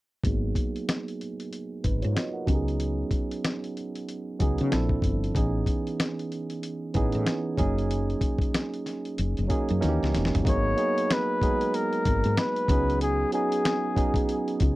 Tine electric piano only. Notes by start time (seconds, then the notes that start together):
0.23 F#3 A#3 B3 D#4 G#4
1.84 D#4 B4
2.02 F4 C#5
2.15 F#4 D#5
2.33 A#4 F#5
2.46 F#3 B3 C#4 D#4 G4
2.55 G#4
4.39 F#3 B3 C#4 D#4 G#4
4.71 F3 C4 D4 E4 A4
5.35 E3 B3 C#4 D#4 G#4
6.94 E3 B3 C#4 D#4 G#4
7.57 F#3 A#3 C#4 D#4 G#4
9.48 F#3 A#3 C#4 D#4 G#4
9.80 E3 A#3 C#4 D#4 F#4
9.89 G4
10.44 F#3 A#3 B3 D#4 G#4
10.76 F#3 A#3 B3 D#4 G#4
11.41 F#3 G#3 B3 D#4 G#4
12.69 F#3 B3 C#4 D#4 G#4
13.33 F#3 B3 C#4 D#4 G#4
13.95 F#3 B3 C#4 D#4 G#4